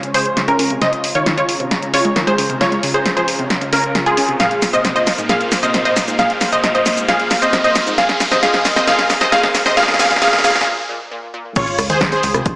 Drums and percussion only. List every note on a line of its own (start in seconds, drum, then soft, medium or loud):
0.03 closed hi-hat soft
0.14 open hi-hat loud
0.26 closed hi-hat soft
0.37 snare medium
0.37 closed hi-hat medium
0.48 closed hi-hat soft
0.59 open hi-hat loud
0.70 closed hi-hat soft
0.82 snare medium
0.82 closed hi-hat medium
0.93 closed hi-hat soft
1.04 open hi-hat loud
1.15 closed hi-hat soft
1.26 snare medium
1.26 closed hi-hat medium
1.38 closed hi-hat soft
1.49 open hi-hat loud
1.60 closed hi-hat soft
1.71 snare medium
1.71 closed hi-hat medium
1.82 closed hi-hat soft
1.94 open hi-hat loud
2.05 closed hi-hat soft
2.16 snare medium
2.16 closed hi-hat medium
2.27 closed hi-hat soft
2.38 open hi-hat loud
2.50 closed hi-hat soft
2.61 snare medium
2.61 closed hi-hat medium
2.72 closed hi-hat soft
2.83 open hi-hat loud
2.94 closed hi-hat soft
3.06 snare medium
3.06 closed hi-hat medium
3.17 closed hi-hat soft
3.28 open hi-hat loud
3.39 closed hi-hat soft
3.50 snare medium
3.50 closed hi-hat medium
3.61 closed hi-hat soft
3.73 open hi-hat loud
3.84 closed hi-hat soft
3.95 snare medium
3.95 closed hi-hat medium
4.06 closed hi-hat soft
4.17 open hi-hat loud
4.29 closed hi-hat soft
4.40 snare medium
4.40 closed hi-hat medium
4.40 shaker soft
4.51 closed hi-hat soft
4.62 snare medium
4.62 open hi-hat loud
4.62 shaker medium
4.73 closed hi-hat soft
4.73 shaker soft
4.85 snare medium
4.85 closed hi-hat medium
4.85 shaker soft
4.96 closed hi-hat soft
5.07 snare medium
5.07 open hi-hat loud
5.07 shaker medium
5.18 closed hi-hat soft
5.18 shaker soft
5.29 snare medium
5.29 closed hi-hat medium
5.29 shaker soft
5.41 closed hi-hat soft
5.52 snare medium
5.52 open hi-hat loud
5.52 shaker medium
5.63 closed hi-hat soft
5.63 shaker soft
5.74 snare medium
5.74 closed hi-hat medium
5.74 shaker soft
5.85 closed hi-hat soft
5.97 snare medium
5.97 open hi-hat loud
5.97 shaker medium
6.08 closed hi-hat soft
6.08 shaker soft
6.19 snare medium
6.19 closed hi-hat medium
6.19 shaker soft
6.30 closed hi-hat soft
6.41 snare medium
6.41 open hi-hat loud
6.41 shaker medium
6.52 closed hi-hat soft
6.52 shaker soft
6.64 snare medium
6.64 closed hi-hat medium
6.64 shaker soft
6.75 closed hi-hat soft
6.86 snare medium
6.86 open hi-hat loud
6.86 shaker medium
6.97 closed hi-hat soft
6.97 shaker soft
7.08 snare medium
7.08 closed hi-hat medium
7.08 shaker soft
7.20 closed hi-hat soft
7.31 snare medium
7.31 open hi-hat loud
7.31 shaker medium
7.42 closed hi-hat soft
7.42 shaker soft
7.53 snare medium
7.53 closed hi-hat medium
7.53 shaker soft
7.64 closed hi-hat soft
7.76 snare medium
7.76 open hi-hat loud
7.76 shaker medium
7.87 closed hi-hat soft
7.87 shaker soft
7.98 snare loud
7.98 closed hi-hat medium
7.98 shaker soft
8.09 snare medium
8.09 closed hi-hat soft
8.20 snare medium
8.20 open hi-hat loud
8.20 shaker medium
8.32 snare medium
8.32 closed hi-hat soft
8.32 shaker soft
8.43 snare medium
8.43 closed hi-hat medium
8.43 shaker soft
8.54 snare medium
8.54 closed hi-hat soft
8.65 snare loud
8.65 open hi-hat loud
8.65 shaker medium
8.76 snare medium
8.76 closed hi-hat soft
8.76 shaker soft
8.88 snare loud
8.88 closed hi-hat medium
8.88 shaker soft
8.99 snare medium
8.99 closed hi-hat soft
9.10 snare loud
9.10 open hi-hat loud
9.10 shaker medium
9.21 snare medium
9.21 closed hi-hat soft
9.21 shaker soft
9.32 snare loud
9.32 closed hi-hat medium
9.32 shaker soft
9.43 snare medium
9.43 closed hi-hat soft
9.55 snare loud
9.55 open hi-hat loud
9.55 shaker medium
9.66 snare medium
9.66 shaker soft
9.77 snare loud
9.77 closed hi-hat medium
9.77 shaker soft
9.83 snare medium
9.88 snare medium
9.88 closed hi-hat soft
9.94 snare medium
9.99 snare loud
9.99 open hi-hat loud
9.99 shaker medium
10.05 snare medium
10.11 snare medium
10.11 closed hi-hat soft
10.11 shaker soft
10.16 snare medium
10.22 snare loud
10.22 closed hi-hat medium
10.22 shaker soft
10.27 snare medium
10.33 snare medium
10.33 closed hi-hat soft
10.39 snare medium
10.44 snare loud
10.44 open hi-hat loud
10.44 shaker medium
10.50 snare medium
10.55 snare medium
10.55 closed hi-hat soft
10.55 shaker soft
10.61 snare medium
11.56 kick loud
11.56 closed hi-hat medium
11.56 crash loud
11.56 shaker soft
11.67 closed hi-hat medium
11.79 cross-stick medium
11.79 open hi-hat loud
11.79 shaker medium
11.90 closed hi-hat medium
11.90 shaker soft
12.01 kick loud
12.01 snare loud
12.01 closed hi-hat medium
12.01 shaker soft
12.12 closed hi-hat medium
12.23 open hi-hat loud
12.23 shaker medium
12.34 cross-stick medium
12.34 closed hi-hat medium
12.34 shaker soft
12.46 kick loud
12.46 closed hi-hat medium
12.46 shaker soft